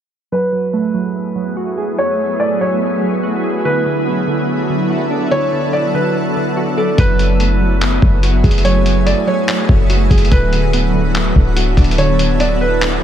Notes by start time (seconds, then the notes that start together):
0.32 F#3 A3 B3 E4 F#4 G#4 B4 E5
0.52 F#3
0.73 A3
0.94 F#3
1.35 F#3
1.57 F#4
1.78 G#4
1.98 F#3 C#5
2.19 F#3
2.40 A3 D5
2.60 F#3 C#5
3.03 F#3
3.23 F#4
3.44 G#4
3.65 D3 D4 A4 B4
3.86 D3
4.07 B3
4.27 D3
4.70 D3
4.90 F#4
5.11 D4
5.31 D3 C#5
5.52 D3
5.73 B3 D5
5.94 D3 B4
6.36 D3
6.57 F#4
6.77 A4 D5
6.98 F#1 F#3 A3 B3 E4 G#4 B4 E5, kick, closed hi-hat
7.19 F#3, closed hi-hat
7.40 A3, closed hi-hat
7.61 F#3
7.81 clap, closed hi-hat
8.02 F#1 F#3, kick
8.23 F#4, closed hi-hat
8.44 F#1 G#4, kick, closed hi-hat
8.51 closed hi-hat
8.58 closed hi-hat
8.65 F#3 C#5, closed hi-hat
8.86 F#3, closed hi-hat
9.06 A3 D5, closed hi-hat
9.27 F#3 C#5
9.48 clap, closed hi-hat
9.69 F#1 F#3, kick
9.90 F#4, closed hi-hat
10.10 F#1 G#4, kick, closed hi-hat
10.18 closed hi-hat
10.25 closed hi-hat
10.31 D1 D3 B3 D4 E4 F#4 A4 B4, kick, closed hi-hat
10.52 D3, closed hi-hat
10.73 B3, closed hi-hat
10.94 D3
11.15 clap, closed hi-hat
11.36 D1 D3, kick
11.56 F#4, closed hi-hat
11.77 D1 D4, kick, closed hi-hat
11.84 closed hi-hat
11.91 closed hi-hat
11.98 D3 C#5, closed hi-hat
12.19 D3, closed hi-hat
12.40 B3 D5, closed hi-hat
12.61 D3 B4
12.81 clap, closed hi-hat